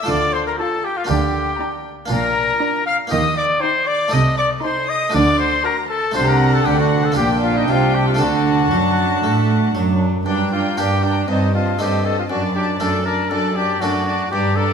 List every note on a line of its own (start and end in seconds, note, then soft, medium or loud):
0.03 1.04 A3 soft
0.03 1.05 F4 soft
0.03 1.05 A4 soft
0.08 0.48 D2 medium
0.08 0.47 D3 soft
0.08 0.49 D3 medium
0.08 0.34 D5 medium
0.08 0.34 D6 medium
0.33 0.46 C5 medium
0.33 0.39 C6 medium
0.47 0.58 A#4 medium
0.47 0.52 A#5 medium
0.59 0.97 F4 medium
0.59 0.86 A4 medium
0.59 0.97 A5 soft
0.59 0.84 A5 soft
0.84 0.98 G4 medium
0.84 0.97 G5 medium
0.97 1.09 F4 medium
0.97 1.09 F5 medium
1.04 2.04 A#3 soft
1.04 2.06 D4 soft
1.04 2.07 G4 soft
1.04 1.85 G4 medium
1.09 1.49 D2 medium
1.09 1.49 D3 medium
1.09 1.48 D3 soft
1.09 1.85 G5 medium
1.59 1.97 D4 soft
1.59 1.97 A#5 medium
2.06 3.06 A#3 soft
2.06 3.07 D4 soft
2.06 3.08 F4 soft
2.11 2.51 A#1 medium
2.11 2.50 A#2 soft
2.11 2.51 A#2 medium
2.11 2.83 A#4 medium
2.11 2.83 A#5 medium
2.61 2.99 D4 medium
2.61 2.99 A#5 medium
2.86 2.98 F5 medium
2.86 2.95 F6 medium
3.07 3.51 D#2 medium
3.07 4.08 A#3 soft
3.07 4.08 D#4 soft
3.07 4.09 G4 soft
3.07 3.36 D#5 medium
3.12 3.51 D#3 soft
3.12 3.52 D#3 medium
3.12 3.37 D#6 medium
3.37 3.62 D5 medium
3.37 3.45 D6 medium
3.61 4.00 D#4 medium
3.61 3.89 C5 medium
3.61 4.00 G5 medium
3.61 3.87 C6 medium
3.87 4.14 D5 medium
3.87 4.12 D6 medium
4.08 5.08 A3 soft
4.08 5.10 D#4 soft
4.08 5.11 A4 soft
4.12 4.53 C2 medium
4.12 4.52 C3 soft
4.12 4.53 C3 medium
4.12 4.38 D#5 medium
4.12 4.21 D#6 medium
4.38 4.50 D5 medium
4.38 4.46 D6 medium
4.63 5.01 D#4 medium
4.63 4.90 C5 medium
4.63 5.02 A5 soft
4.63 4.89 C6 medium
4.89 5.14 D#5 medium
4.89 5.14 D#6 medium
5.09 6.10 A3 soft
5.09 6.11 D4 soft
5.09 6.12 F#4 soft
5.14 5.54 D2 medium
5.14 5.54 D3 soft
5.14 5.55 D3 medium
5.14 5.38 D5 medium
5.14 5.39 D6 medium
5.38 5.64 C5 medium
5.38 5.65 C6 medium
5.64 6.03 F#4 medium
5.64 5.76 A#4 medium
5.64 6.03 A5 medium
5.64 5.90 A#5 medium
5.89 6.14 A4 medium
5.89 6.16 A5 medium
6.11 7.12 A3 soft
6.11 7.12 D4 soft
6.11 7.14 F#4 soft
6.11 6.27 C5 medium
6.11 6.28 C6 medium
6.16 6.63 C2 medium
6.16 6.63 C3 medium
6.16 6.63 C3 soft
6.16 7.14 D4 medium
6.16 7.14 F#5 medium
6.28 6.55 A#4 medium
6.28 6.53 A#5 medium
6.54 6.67 A4 medium
6.54 6.67 A5 medium
6.66 7.17 D2 medium
6.66 7.13 D3 soft
6.66 7.17 D3 medium
6.66 6.78 G4 medium
6.66 6.80 G5 medium
6.79 7.06 F#4 medium
6.79 7.05 F#5 medium
7.04 7.16 A4 medium
7.04 7.17 A5 medium
7.12 8.14 A#3 soft
7.12 8.15 D4 soft
7.12 8.16 G4 soft
7.16 7.69 A#1 medium
7.16 7.64 A#2 soft
7.16 7.69 A#2 medium
7.16 8.18 D4 medium
7.16 7.28 G4 medium
7.16 7.43 G5 medium
7.16 8.18 G5 medium
7.43 7.59 F4 medium
7.43 7.56 F5 medium
7.56 7.71 D#4 medium
7.56 7.69 D#5 soft
7.68 8.19 C2 medium
7.68 8.16 C3 soft
7.68 8.19 C3 medium
7.68 7.96 F4 medium
7.68 7.95 F5 soft
7.95 8.07 G4 medium
7.95 8.08 G5 medium
8.08 8.21 F4 medium
8.08 8.13 F5 soft
8.15 9.22 A3 soft
8.15 10.20 D4 soft
8.15 10.21 A4 soft
8.19 8.72 D2 soft
8.19 8.67 D3 soft
8.19 8.72 D3 medium
8.19 10.03 D4 medium
8.19 9.72 F#4 medium
8.19 9.72 F#5 medium
8.19 10.07 A5 soft
8.71 9.23 F#2 medium
8.71 9.19 F#3 soft
8.71 9.24 F#3 soft
9.24 9.74 A2 soft
9.24 9.71 A3 soft
9.24 9.74 A3 medium
9.75 10.25 F#2 medium
9.75 10.22 F#3 soft
9.75 10.26 F#3 soft
10.26 10.68 G2 soft
10.26 10.72 G2 soft
10.26 10.50 D4 medium
10.26 10.51 D4 soft
10.26 10.50 G5 soft
10.26 10.51 A#5 soft
10.52 10.77 D4 soft
10.52 10.79 F4 medium
10.52 10.77 G5 soft
10.52 10.77 A#5 soft
10.77 11.22 G2 soft
10.77 11.19 G2 soft
10.77 11.14 A#3 soft
10.77 11.14 D4 soft
10.77 11.02 D4 soft
10.77 11.05 G4 soft
10.77 11.15 G4 soft
10.77 11.01 G5 soft
10.77 11.02 A#5 soft
11.02 11.28 D4 medium
11.02 11.28 D4 soft
11.02 11.28 G5 soft
11.02 11.28 A#5 soft
11.28 11.70 G2 soft
11.28 11.73 G2 soft
11.28 11.53 C4 soft
11.28 11.54 D#4 soft
11.28 11.52 D#5 soft
11.28 11.53 A5 soft
11.53 11.78 C4 soft
11.53 11.79 F4 medium
11.53 11.77 D#5 soft
11.53 11.79 A5 soft
11.79 12.21 G2 soft
11.79 12.24 G2 soft
11.79 12.15 A3 soft
11.79 12.16 C4 soft
11.79 12.03 C4 soft
11.79 12.16 D#4 soft
11.79 12.07 G4 medium
11.79 12.03 D#5 soft
11.79 12.04 A5 soft
12.04 12.29 C4 soft
12.04 12.17 A4 medium
12.04 12.29 D#5 soft
12.04 12.28 A5 soft
12.19 12.24 F4 soft
12.30 12.71 F#2 soft
12.30 12.74 F#2 soft
12.30 12.55 D4 soft
12.30 12.42 F#4 soft
12.30 12.54 D5 soft
12.30 12.54 A5 soft
12.55 12.79 D4 soft
12.55 12.67 G4 medium
12.55 12.79 D5 soft
12.55 12.78 A5 soft
12.79 13.25 F#2 soft
12.79 13.22 F#2 soft
12.79 13.17 A3 soft
12.79 13.17 D4 soft
12.79 13.05 D4 soft
12.79 13.07 A4 medium
12.79 13.05 D5 soft
12.79 13.04 A5 soft
13.05 13.30 D4 soft
13.05 13.31 A#4 medium
13.05 13.30 D5 soft
13.05 13.30 A5 soft
13.30 13.73 F#2 soft
13.30 13.76 F#2 soft
13.30 13.55 D4 soft
13.30 13.57 A4 medium
13.30 13.56 D5 soft
13.30 13.55 A5 soft
13.56 13.80 D4 soft
13.56 13.82 G4 medium
13.56 13.81 D5 soft
13.56 13.80 A5 soft
13.81 14.23 F#2 soft
13.81 14.27 F#2 soft
13.81 14.19 A3 soft
13.81 14.07 D4 soft
13.81 14.19 D4 soft
13.81 14.30 F#4 medium
13.81 14.06 D5 soft
13.81 14.06 A5 soft
14.07 14.32 D4 soft
14.07 14.32 D5 soft
14.07 14.32 A5 soft
14.31 14.73 G2 soft
14.31 14.56 D4 soft
14.31 14.58 G4 medium
14.31 14.58 D5 soft
14.31 14.56 A#5 soft
14.56 14.73 D4 soft
14.56 14.73 A4 medium
14.56 14.73 D5 soft
14.56 14.73 A#5 soft